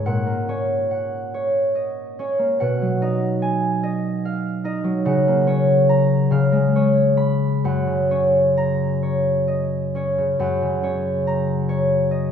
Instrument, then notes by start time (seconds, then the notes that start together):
harp
Already playing: C#2 G#2 C#4 C#5 F5 G#5
0.06 A#2 F#5
0.26 A#3
0.48 C#4 C#5
0.91 F#5
1.34 C#5
1.75 D#5
2.19 C#4 C#5
2.39 A#3
2.60 B2 F#5
2.82 F#3
3.02 D#4 D#5
3.42 G#5
3.83 D#5
4.25 F5
4.64 D#4 D#5
4.84 F#3
5.05 C#3 F#5
5.28 A#3
5.47 C#4 C#5
5.89 A#5
6.31 C#3 F5
6.52 G#3
6.76 C#4 C#5
7.17 B5
7.64 F#2 F#5
7.87 C#3
8.11 C#4 C#5
8.57 A#5
9.03 C#5
9.48 D#5
9.95 C#4 C#5
10.18 C#3
10.39 F#2 F#5
10.62 C#3
10.83 C#4 C#5
11.27 A#5
11.69 C#5
12.11 D#5